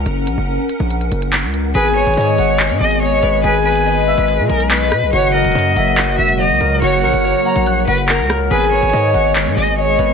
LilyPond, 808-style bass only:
\new Staff \with { instrumentName = "808-style bass" } { \clef bass \time 4/4 \key gis \minor \tempo 4 = 142 fis,,8 ais,,16 fis,,8 r8 ais,,8. fis,,8. cis,8. | gis,,8. gis,,16 gis,8 gis,,8. gis,16 gis,,4 gis,,8 | gis,,4.~ gis,,16 gis,,8 b,16 b,,4 b,16 b,,16 | fis,,8. e,,16 fis,8 fis,,4 e,,8. cis,16 cis,8 |
fis,,8 ais,,16 fis,,8 r8 ais,,8. fis,,8. cis,8. | gis,,8. gis,,16 gis,8 gis,,8. gis,16 gis,,4 gis,,8 | }